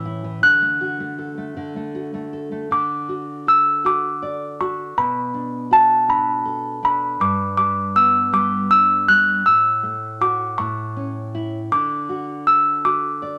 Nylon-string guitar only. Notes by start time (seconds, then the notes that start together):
Already playing: A2 E3 C#4
0.05 E4
0.24 E3
0.43 D3
0.62 A3
0.81 F#4
1.00 A3
1.18 A4
1.38 A3
1.57 D3
1.76 A3
1.95 F#4
2.14 A3
2.33 A4
2.52 A3
2.71 D3
3.09 F#4
3.47 A4
3.85 F#4
4.22 D5
4.60 F#4
4.97 B2
5.34 D4
5.71 F#4
6.08 D4
6.45 A4
6.83 D4
7.20 G2
7.57 G3
7.95 B3
8.32 G3
8.70 D4
9.08 G3
9.46 A2
9.83 A3
10.21 F#4
10.59 A2
10.97 C#4
11.35 E4
11.72 D3
12.09 F#4
12.47 A4
12.85 F#4
13.22 D5